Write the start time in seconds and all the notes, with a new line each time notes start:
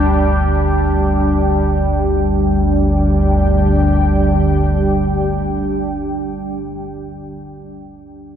Already playing: G1 D2 G3 D4 G4 G5
2.02 G1 D2 G3
2.18 D4
2.37 G4
2.54 G5